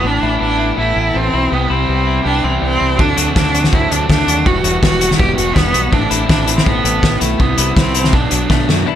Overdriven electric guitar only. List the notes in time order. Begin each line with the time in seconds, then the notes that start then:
Already playing: B3
0.04 E3 E4 A4
0.76 E3 E4
0.80 A4
1.50 G3 E4
1.54 G4
2.24 G3 E4 G4
2.97 F#3 C4 D4 A4
3.72 F#3 C4 D4 A4
4.45 G3 B3 E4
5.18 G3 B3 E4
5.90 C4 E4
5.94 A4
6.67 E4 A4
7.38 G3 E4
8.11 F#3 B3 D4